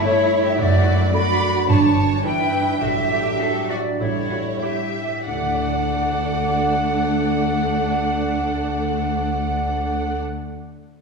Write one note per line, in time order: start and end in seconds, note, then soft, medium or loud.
0.00 0.61 G2 medium
0.00 0.85 A3 soft
0.00 1.70 A3 medium
0.00 0.61 C#4 soft
0.00 0.31 E4 soft
0.00 0.55 E4 medium
0.00 1.14 E4 medium
0.04 0.45 A3 medium
0.04 0.45 E4 medium
0.04 0.44 E4 medium
0.04 1.13 A4 medium
0.04 0.44 C#5 medium
0.04 0.42 C#5 medium
0.32 0.61 E4 soft
0.45 0.58 G4 medium
0.45 0.58 E5 medium
0.45 0.51 E5 medium
0.45 0.59 E5 medium
0.58 1.02 F#1 medium
0.58 1.72 F#2 medium
0.58 3.96 D4 medium
0.58 1.14 F#4 medium
0.58 1.10 D5 medium
0.58 1.13 D5 medium
0.87 1.72 A3 soft
1.13 1.55 A3 medium
1.13 1.55 D4 medium
1.13 1.68 F#4 medium
1.13 1.72 A4 medium
1.13 1.68 D5 medium
1.13 1.71 B5 medium
1.13 1.66 B5 medium
1.13 1.69 B5 medium
1.42 2.52 D4 soft
1.69 2.13 G1 medium
1.69 2.84 G2 medium
1.69 2.64 E3 medium
1.69 2.24 D4 medium
1.69 2.24 C#5 medium
1.69 2.25 A5 medium
1.69 2.21 A5 medium
1.69 2.24 A5 medium
1.97 2.84 B3 soft
2.24 2.67 E3 medium
2.24 2.67 D4 medium
2.24 2.84 E4 soft
2.24 2.81 E4 medium
2.24 2.80 B4 medium
2.24 2.78 G5 medium
2.24 2.58 G5 medium
2.24 2.81 G5 medium
2.53 3.69 D4 soft
2.81 3.28 A1 medium
2.81 3.99 A2 soft
2.81 3.97 F#3 soft
2.81 2.89 F#4 soft
2.81 3.68 G4 medium
2.81 3.72 E5 medium
2.81 3.66 E5 medium
2.81 3.70 E5 medium
3.10 4.29 A3 soft
3.10 3.39 G4 medium
3.39 3.84 F#3 soft
3.39 3.84 D4 soft
3.39 4.02 F#4 soft
3.39 3.69 A4 medium
3.69 4.03 D4 soft
3.69 3.77 F#4 soft
3.69 4.00 D5 medium
3.69 3.98 D5 soft
3.69 3.78 D5 soft
3.99 4.49 A1 medium
3.99 5.29 A2 soft
3.99 4.94 G3 soft
3.99 4.94 E4 soft
3.99 4.08 E4 soft
3.99 4.61 E4 medium
3.99 4.58 C#5 soft
3.99 4.40 C#5 medium
3.99 4.61 C#5 medium
4.29 5.32 A3 soft
4.29 4.37 F#4 soft
4.61 5.10 G3 soft
4.61 5.10 E4 soft
4.61 5.26 G4 soft
4.61 4.69 G4 soft
4.61 5.29 G4 soft
4.61 5.23 E5 medium
4.61 5.23 E5 soft
4.61 5.27 E5 soft
4.94 5.29 E4 soft
5.26 10.17 D2 soft
5.26 10.18 D3 soft
5.26 10.17 A3 soft
5.26 10.17 D4 soft
5.26 10.18 A4 soft
5.26 10.18 D5 soft
5.26 10.17 F#5 medium
5.26 10.18 F#5 soft
5.33 10.24 A3 soft
5.40 10.32 D4 soft
5.47 10.39 A4 soft
5.54 10.46 D5 soft